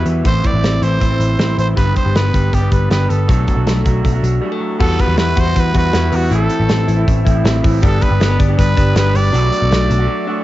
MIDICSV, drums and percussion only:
0, 0, Header, 1, 2, 480
1, 0, Start_track
1, 0, Key_signature, 1, "minor"
1, 0, Tempo, 378549
1, 318, Time_signature, 4, 2, 24, 8
1, 13235, End_track
2, 0, Start_track
2, 0, Title_t, "Drums"
2, 74, Note_on_c, 9, 42, 59
2, 201, Note_off_c, 9, 42, 0
2, 319, Note_on_c, 9, 36, 106
2, 321, Note_on_c, 9, 42, 87
2, 446, Note_off_c, 9, 36, 0
2, 447, Note_off_c, 9, 42, 0
2, 558, Note_on_c, 9, 42, 56
2, 566, Note_on_c, 9, 36, 69
2, 685, Note_off_c, 9, 42, 0
2, 693, Note_off_c, 9, 36, 0
2, 808, Note_on_c, 9, 42, 75
2, 815, Note_on_c, 9, 38, 95
2, 935, Note_off_c, 9, 42, 0
2, 942, Note_off_c, 9, 38, 0
2, 1046, Note_on_c, 9, 42, 64
2, 1173, Note_off_c, 9, 42, 0
2, 1286, Note_on_c, 9, 36, 73
2, 1286, Note_on_c, 9, 42, 78
2, 1412, Note_off_c, 9, 42, 0
2, 1413, Note_off_c, 9, 36, 0
2, 1532, Note_on_c, 9, 42, 64
2, 1658, Note_off_c, 9, 42, 0
2, 1763, Note_on_c, 9, 42, 70
2, 1770, Note_on_c, 9, 38, 99
2, 1889, Note_off_c, 9, 42, 0
2, 1897, Note_off_c, 9, 38, 0
2, 2011, Note_on_c, 9, 42, 63
2, 2138, Note_off_c, 9, 42, 0
2, 2248, Note_on_c, 9, 36, 101
2, 2253, Note_on_c, 9, 42, 89
2, 2375, Note_off_c, 9, 36, 0
2, 2380, Note_off_c, 9, 42, 0
2, 2483, Note_on_c, 9, 42, 54
2, 2492, Note_on_c, 9, 36, 66
2, 2610, Note_off_c, 9, 42, 0
2, 2619, Note_off_c, 9, 36, 0
2, 2728, Note_on_c, 9, 42, 76
2, 2736, Note_on_c, 9, 38, 101
2, 2855, Note_off_c, 9, 42, 0
2, 2863, Note_off_c, 9, 38, 0
2, 2969, Note_on_c, 9, 42, 67
2, 2970, Note_on_c, 9, 36, 79
2, 3096, Note_off_c, 9, 36, 0
2, 3096, Note_off_c, 9, 42, 0
2, 3210, Note_on_c, 9, 36, 71
2, 3213, Note_on_c, 9, 42, 78
2, 3337, Note_off_c, 9, 36, 0
2, 3340, Note_off_c, 9, 42, 0
2, 3445, Note_on_c, 9, 42, 60
2, 3448, Note_on_c, 9, 36, 80
2, 3571, Note_off_c, 9, 42, 0
2, 3575, Note_off_c, 9, 36, 0
2, 3686, Note_on_c, 9, 42, 72
2, 3693, Note_on_c, 9, 38, 98
2, 3813, Note_off_c, 9, 42, 0
2, 3820, Note_off_c, 9, 38, 0
2, 3935, Note_on_c, 9, 42, 61
2, 4062, Note_off_c, 9, 42, 0
2, 4172, Note_on_c, 9, 36, 101
2, 4174, Note_on_c, 9, 42, 82
2, 4298, Note_off_c, 9, 36, 0
2, 4301, Note_off_c, 9, 42, 0
2, 4407, Note_on_c, 9, 42, 54
2, 4414, Note_on_c, 9, 36, 68
2, 4533, Note_off_c, 9, 42, 0
2, 4540, Note_off_c, 9, 36, 0
2, 4649, Note_on_c, 9, 42, 74
2, 4657, Note_on_c, 9, 38, 93
2, 4776, Note_off_c, 9, 42, 0
2, 4784, Note_off_c, 9, 38, 0
2, 4887, Note_on_c, 9, 42, 64
2, 4890, Note_on_c, 9, 36, 82
2, 5013, Note_off_c, 9, 42, 0
2, 5017, Note_off_c, 9, 36, 0
2, 5131, Note_on_c, 9, 36, 75
2, 5133, Note_on_c, 9, 42, 80
2, 5258, Note_off_c, 9, 36, 0
2, 5260, Note_off_c, 9, 42, 0
2, 5372, Note_on_c, 9, 42, 63
2, 5498, Note_off_c, 9, 42, 0
2, 6090, Note_on_c, 9, 49, 88
2, 6091, Note_on_c, 9, 36, 110
2, 6216, Note_off_c, 9, 49, 0
2, 6218, Note_off_c, 9, 36, 0
2, 6327, Note_on_c, 9, 42, 56
2, 6334, Note_on_c, 9, 36, 72
2, 6454, Note_off_c, 9, 42, 0
2, 6461, Note_off_c, 9, 36, 0
2, 6558, Note_on_c, 9, 42, 80
2, 6566, Note_on_c, 9, 38, 102
2, 6685, Note_off_c, 9, 42, 0
2, 6693, Note_off_c, 9, 38, 0
2, 6801, Note_on_c, 9, 42, 66
2, 6810, Note_on_c, 9, 36, 86
2, 6927, Note_off_c, 9, 42, 0
2, 6937, Note_off_c, 9, 36, 0
2, 7049, Note_on_c, 9, 42, 90
2, 7050, Note_on_c, 9, 36, 78
2, 7176, Note_off_c, 9, 42, 0
2, 7177, Note_off_c, 9, 36, 0
2, 7279, Note_on_c, 9, 42, 72
2, 7287, Note_on_c, 9, 36, 80
2, 7406, Note_off_c, 9, 42, 0
2, 7413, Note_off_c, 9, 36, 0
2, 7518, Note_on_c, 9, 42, 72
2, 7525, Note_on_c, 9, 38, 105
2, 7645, Note_off_c, 9, 42, 0
2, 7652, Note_off_c, 9, 38, 0
2, 7763, Note_on_c, 9, 46, 64
2, 7889, Note_off_c, 9, 46, 0
2, 8008, Note_on_c, 9, 42, 91
2, 8134, Note_off_c, 9, 42, 0
2, 8237, Note_on_c, 9, 42, 60
2, 8364, Note_off_c, 9, 42, 0
2, 8483, Note_on_c, 9, 42, 82
2, 8491, Note_on_c, 9, 38, 107
2, 8610, Note_off_c, 9, 42, 0
2, 8618, Note_off_c, 9, 38, 0
2, 8727, Note_on_c, 9, 42, 70
2, 8853, Note_off_c, 9, 42, 0
2, 8975, Note_on_c, 9, 36, 78
2, 8975, Note_on_c, 9, 42, 91
2, 9102, Note_off_c, 9, 36, 0
2, 9102, Note_off_c, 9, 42, 0
2, 9212, Note_on_c, 9, 36, 83
2, 9215, Note_on_c, 9, 42, 70
2, 9339, Note_off_c, 9, 36, 0
2, 9342, Note_off_c, 9, 42, 0
2, 9447, Note_on_c, 9, 42, 81
2, 9454, Note_on_c, 9, 38, 105
2, 9573, Note_off_c, 9, 42, 0
2, 9580, Note_off_c, 9, 38, 0
2, 9692, Note_on_c, 9, 46, 67
2, 9693, Note_on_c, 9, 36, 91
2, 9819, Note_off_c, 9, 46, 0
2, 9820, Note_off_c, 9, 36, 0
2, 9924, Note_on_c, 9, 42, 100
2, 9931, Note_on_c, 9, 36, 114
2, 10051, Note_off_c, 9, 42, 0
2, 10058, Note_off_c, 9, 36, 0
2, 10163, Note_on_c, 9, 42, 58
2, 10175, Note_on_c, 9, 36, 73
2, 10290, Note_off_c, 9, 42, 0
2, 10301, Note_off_c, 9, 36, 0
2, 10408, Note_on_c, 9, 42, 82
2, 10416, Note_on_c, 9, 38, 107
2, 10535, Note_off_c, 9, 42, 0
2, 10543, Note_off_c, 9, 38, 0
2, 10646, Note_on_c, 9, 42, 65
2, 10651, Note_on_c, 9, 36, 89
2, 10772, Note_off_c, 9, 42, 0
2, 10777, Note_off_c, 9, 36, 0
2, 10889, Note_on_c, 9, 42, 87
2, 10890, Note_on_c, 9, 36, 84
2, 11016, Note_off_c, 9, 42, 0
2, 11017, Note_off_c, 9, 36, 0
2, 11127, Note_on_c, 9, 36, 84
2, 11127, Note_on_c, 9, 42, 75
2, 11254, Note_off_c, 9, 36, 0
2, 11254, Note_off_c, 9, 42, 0
2, 11358, Note_on_c, 9, 42, 78
2, 11365, Note_on_c, 9, 38, 103
2, 11485, Note_off_c, 9, 42, 0
2, 11492, Note_off_c, 9, 38, 0
2, 11602, Note_on_c, 9, 46, 66
2, 11729, Note_off_c, 9, 46, 0
2, 11846, Note_on_c, 9, 42, 96
2, 11972, Note_off_c, 9, 42, 0
2, 12077, Note_on_c, 9, 42, 62
2, 12204, Note_off_c, 9, 42, 0
2, 12323, Note_on_c, 9, 42, 84
2, 12331, Note_on_c, 9, 38, 106
2, 12450, Note_off_c, 9, 42, 0
2, 12458, Note_off_c, 9, 38, 0
2, 12561, Note_on_c, 9, 42, 71
2, 12687, Note_off_c, 9, 42, 0
2, 13235, End_track
0, 0, End_of_file